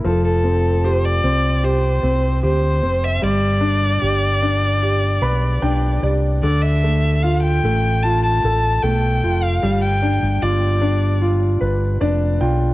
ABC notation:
X:1
M:4/4
L:1/16
Q:1/4=75
K:Gmix
V:1 name="Violin"
A A3 c d3 c4 c3 e | d12- d2 z2 | d e3 f g3 a a3 g3 f- | f g3 d4 z8 |]
V:2 name="Grand piano"
F,2 C2 G2 C2 G2 C2 G2 C2 | G,2 D2 G2 D2 G2 [Bb]2 [Dg]2 [Gd]2 | D,2 A,2 F2 A,2 F2 A2 A,2 F2 | G,2 D2 F2 D2 F2 B2 [Dd]2 [Fg]2 |]
V:3 name="Fingered electric bass" clef=bass
F,,,6 C,,4 C,,2 D,,2 F,,,2 | G,,,4 G,,,6 B,,,2 B,,,2 C,,2 | D,,6 A,,,4 A,,,2 B,,,2 F,,,2 | G,,,3 G,,, G,,,6 G,,,2 F,,,2 B,,,2 |]